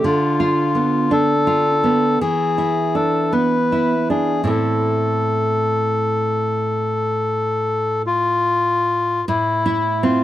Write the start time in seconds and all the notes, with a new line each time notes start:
0.04 D3 F4
0.40 F4
0.75 B3
1.11 D4 A4
1.47 F4
1.84 B3
2.21 E3 G#4
2.58 E4
2.95 D4 A4
3.32 B3 B4
3.72 E4
4.10 D4 G#4
4.44 A2 C4 E4
4.49 A4
8.06 F4
9.28 A2 E4
9.66 E4
10.03 C4 F4